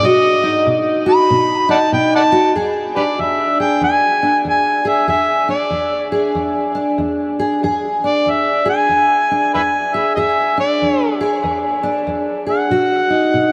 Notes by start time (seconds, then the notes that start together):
0.03 B2 F#4 D#5
0.43 D#4
0.66 B2
1.06 F#4 B5
1.30 B2
1.69 D#4 D5 F#5 A5
1.92 B2 G5
2.15 D5 F#5 A5
2.32 F#4
2.55 E2 G#4
2.96 D4 G4 B4 D5
3.19 E2 E5
3.60 G#4 G5
3.81 E2 G#5
4.23 D4
4.45 E2
4.50 G#5
4.85 G#4 E5
5.07 E2 G#4 E5
5.48 D4 D5
5.70 E2
6.12 G#4
6.35 E2
6.75 D4
6.98 E2
7.39 G#4
7.63 E2 G#4
8.04 D4 D5
8.26 E2
8.30 E5
8.65 G#4 G#5
8.89 E2
9.31 D4
9.54 E2 B4 E5 G#5
9.94 G#4 E5
10.15 E2 G#4 D#5
10.19 E5
10.57 D4 D5
10.82 E2
11.01 C#5
11.21 G#4
11.43 E2
11.83 D4
12.07 E2
12.47 G#4 F#5
12.70 B2 F#4
13.10 D#4
13.34 B2